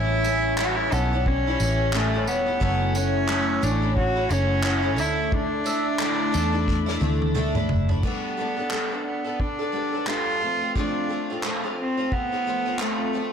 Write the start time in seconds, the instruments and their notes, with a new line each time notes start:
Already playing: fingered electric bass A1, twelve-string acoustic guitar A2 E3 G3 C#4 E4, cello E4
0.24 twelve-string acoustic guitar E3 G3 C#4 E4, mandolin E5, tambourine
0.58 twelve-string acoustic guitar A2 E3 G3 C#4 E4, cello E4, mandolin C#5, clap
0.65 cello F#4
0.76 cello E4
0.92 fingered electric bass B1, twelve-string acoustic guitar E3 G3 C#4 E4, cello B3, mandolin A4, tambourine
1.13 twelve-string acoustic guitar G3 C#4 E4
1.26 cello C#4, kick
1.47 twelve-string acoustic guitar G3 C#4 E4
1.60 fingered electric bass A1, twelve-string acoustic guitar E3 G3 C#4 E4, tambourine
1.93 twelve-string acoustic guitar A2 E3 G3 C#4 E4, cello A3, clap
2.14 twelve-string acoustic guitar G3 C#4 E4
2.27 fingered electric bass E1, cello B3, tambourine
2.47 twelve-string acoustic guitar G3 C#4 E4
2.60 fingered electric bass F#1, twelve-string acoustic guitar F#3 A3 C#4 E4, kick
2.95 twelve-string acoustic guitar F#3 A3 C#4 E4, cello C#4, mandolin F#5, tambourine
3.28 twelve-string acoustic guitar F#3 A3 C#4 E4, mandolin E5, clap
3.61 fingered electric bass A1, twelve-string acoustic guitar F#3 A3 C#4 E4, cello D4, mandolin C#5, tambourine
3.82 twelve-string acoustic guitar A3 C#4 E4
3.97 cello F#4, kick
4.15 twelve-string acoustic guitar A3 C#4 E4
4.29 fingered electric bass F#1, twelve-string acoustic guitar F#3 A3 C#4 E4, cello C#4, tambourine
4.62 twelve-string acoustic guitar F#3 A3 C#4 E4, clap
4.82 twelve-string acoustic guitar A3 C#4 E4
4.96 fingered electric bass D2, twelve-string acoustic guitar D3 A3 D4 E4, cello E4, tambourine
5.32 cello D4, kick
5.64 twelve-string acoustic guitar D3 A3 D4 E4, mandolin E5, tambourine
5.98 twelve-string acoustic guitar D3 A3 D4 E4, mandolin D5, clap
6.32 fingered electric bass E2, twelve-string acoustic guitar D3 A3 D4 E4, mandolin A4, tambourine
6.52 twelve-string acoustic guitar A3 D4 E4
6.68 kick, snare
6.86 twelve-string acoustic guitar A3 D4 E4, snare
7.00 fingered electric bass D2, twelve-string acoustic guitar D3 A3 D4 E4, high tom
7.22 high tom
7.34 twelve-string acoustic guitar D3 A3 D4 E4, mid tom
7.55 twelve-string acoustic guitar A3 D4 E4, mid tom
7.69 fingered electric bass F#1, floor tom
7.89 twelve-string acoustic guitar A3 D4 E4, floor tom
8.03 twelve-string acoustic guitar G3 B3 D4 A4, cello B3, kick, crash
8.37 twelve-string acoustic guitar G3 B3 D4 A4
8.57 twelve-string acoustic guitar B3 D4 A4
8.70 twelve-string acoustic guitar G3 B3 D4 A4, clap
8.90 twelve-string acoustic guitar B3 D4 A4
9.06 cello B3
9.24 twelve-string acoustic guitar B3 D4 A4
9.40 cello D4, kick
9.59 twelve-string acoustic guitar B3 D4 A4
9.72 twelve-string acoustic guitar G3 B3 D4 A4
9.93 twelve-string acoustic guitar B3 D4 A4
10.06 twelve-string acoustic guitar G3 B3 D4 A4, cello F4, clap
10.41 twelve-string acoustic guitar F3 A3 C4 F4
10.61 twelve-string acoustic guitar F3 A3 C4 F4
10.75 twelve-string acoustic guitar F2 C3 F3 A3 C4 F4, cello D4, kick
11.09 twelve-string acoustic guitar F3 A3 C4 F4
11.30 twelve-string acoustic guitar F3 A3 C4 F4
11.43 twelve-string acoustic guitar F2 C3 F3 A3 C4 F4, clap
11.64 twelve-string acoustic guitar F3 A3 C4 F4
11.78 cello C4
11.97 twelve-string acoustic guitar F3 A3 C4 F4
12.12 cello B3, kick
12.32 twelve-string acoustic guitar F3 A3 C4 F4
12.46 twelve-string acoustic guitar F3 A3 C4 F4
12.66 twelve-string acoustic guitar F3 A3 C4 F4
12.79 twelve-string acoustic guitar F2 C3 F3 A3 C4 F4, cello A3, clap
13.13 twelve-string acoustic guitar F3 A3 C4 F4